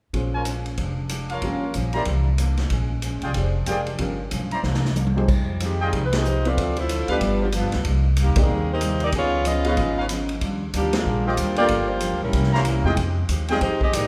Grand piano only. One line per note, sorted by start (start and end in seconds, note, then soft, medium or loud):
0.14 0.78 C#4 soft
0.14 0.78 F4 soft
0.14 0.79 G#4 soft
0.14 0.79 C5 soft
1.43 1.61 C#4 soft
1.43 1.61 F4 soft
1.43 1.61 G4 soft
1.43 1.61 A#4 soft
1.94 2.06 D4 soft
1.94 2.06 E4 soft
1.94 2.06 G4 soft
1.94 2.06 A#4 medium
3.36 3.54 D4 soft
3.36 3.54 G4 soft
3.36 3.54 G#4 soft
3.36 3.54 C5 soft
3.68 3.85 D4 soft
3.68 3.86 G4 soft
3.68 3.86 G#4 soft
3.68 3.86 A#4 soft
3.99 4.17 C#4 soft
3.99 4.17 F4 soft
3.99 4.17 G4 soft
3.99 4.18 A#4 medium
5.16 5.27 F3 medium
5.16 5.27 D#4 soft
5.16 5.28 G4 soft
5.16 5.28 G#4 soft
5.16 5.28 C5 medium
6.13 6.24 D#4 soft
6.13 6.24 G4 soft
6.13 6.24 G#4 soft
6.13 6.24 C5 medium
6.45 6.56 C4 medium
6.45 6.56 E4 soft
6.45 6.56 F4 medium
6.45 6.57 B4 medium
7.09 7.51 B3 soft
7.09 7.51 D4 soft
7.09 7.51 F4 soft
7.09 7.51 G4 medium
8.36 8.48 A#3 medium
8.36 8.48 D4 medium
8.36 8.48 D#4 medium
8.36 8.48 G4 medium
9.65 9.76 B3 medium
9.65 9.76 D#4 soft
9.65 9.76 F4 soft
9.65 9.77 G#4 medium
11.58 11.69 A#3 medium
11.58 11.69 D4 medium
11.58 11.69 F4 medium
11.58 11.69 A4 medium
12.85 12.96 G#3 medium
12.85 12.97 C4 medium
12.85 12.97 D#4 medium
12.85 12.97 G4 medium
13.50 13.61 G#3 medium
13.50 13.61 C4 medium
13.50 13.61 D#4 medium
13.50 13.61 G4 medium